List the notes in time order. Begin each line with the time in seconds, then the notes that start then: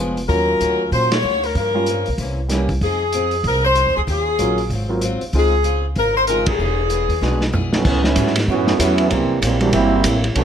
Already playing: F1 F3 G#3 B3 F4
0.00 A#2 G#3 B3 D4
0.17 open hi-hat
0.28 D#2 D#3 F#3 A#3 C#4 F4 F#4 A#4, kick, open hi-hat
0.60 D2 D#3 A#3 C#4 F#4, closed hi-hat
0.91 A#2 D#3 A#3 C#4 F#4 C5, kick, open hi-hat
1.12 C#5, snare, ride
1.22 D2 D#3 A#3 C#4 F#4
1.43 A#4, open hi-hat
1.55 G2 F3 A#3 C#4 A#4, kick, open hi-hat
1.74 G3 A#3 C#4 F4
1.86 G2 F3 A#3 C#4, closed hi-hat
2.06 B1, open hi-hat
2.18 C2 C3 E3 A#3, kick, open hi-hat
2.22 C#4
2.49 C3 E3 G3 A#3 C#4 G4, snare, closed hi-hat
2.53 A#3 C#4
2.69 kick, open hi-hat
2.81 F2 F3 C4 D#4 G#4, kick, open hi-hat
3.12 F3 C4 D#4 G#4, closed hi-hat
3.31 open hi-hat
3.44 C2 F3 A#4, kick, open hi-hat
3.48 C4 D#4 G#4
3.65 C5
3.75 F3 C4 D#4 G#4, closed hi-hat
3.87 D#2
3.97 D2 G#4
4.07 D#2 D#3 F#3 C#4 F4 G#4, kick, open hi-hat
4.39 A#1 D#3 F#3 A#3 C#4 F4, closed hi-hat
4.58 open hi-hat
4.70 G#1 G#2 F#3 C4, kick, open hi-hat
4.74 F4
4.89 F#3 A#3 C4 F4
5.01 G#2 F#3 C4 F4, closed hi-hat
5.21 muted upright bass stroke, open hi-hat
5.33 C#2 C#3 G#3 C4 D#4 F4 G#4, kick, open hi-hat
5.39 G#4
5.63 C#3 C4 F4 G#4, closed hi-hat
5.96 G#1 C#3 C4 F4 G#4 A#4, kick, open hi-hat
6.17 C5
6.27 C#3 G#3 C4 D#4 F4 G#4 A#4, closed hi-hat
6.46 G#4, kick, ride
6.59 E1 E3 B3 D4 G#4
6.90 E3 B3 D4 G#4, closed hi-hat
7.09 D#2, open hi-hat
7.21 B1 E3 G#3 B3 D4 F#4 G#4, snare
7.41 snare
7.53 E3 B3 D4 G#4, floor tom
7.73 A2 F#3 B3 C#4 F#4, snare
7.85 C#2 A2 E3 F#3 B3 C#4, kick, crash
8.04 F#3 B3 C#4 E4, snare
8.16 G#2 A2 F#3 B3 C#4, kick, hi-hat pedal, ride
8.27 snare
8.36 snare, ride
8.47 F#2 A2 E3 F#3 B3 C#4 F#4, kick
8.52 C#4
8.67 snare
8.79 E2 A2 F#3 A3 B3 C#4 E4, kick, hi-hat pedal, ride
8.98 ride
9.10 C2 C3 E3 F#3 G3 A#3 C4 E4, kick, ride
9.42 A#1 C3 E3 F#3 G3 A#3 C4 E4, kick, hi-hat pedal, ride
9.61 E3 G3 A#3 C4 D4 F#4, ride
9.72 G1 C3 F#3 G3 A#3 C4 E4, kick, ride
10.04 A1 C3 F#3 A#3 E4, kick, hi-hat pedal, ride
10.24 ride
10.35 B1 D3 F#3 A3 B3 C#4 D4 A4 C#5, kick, ride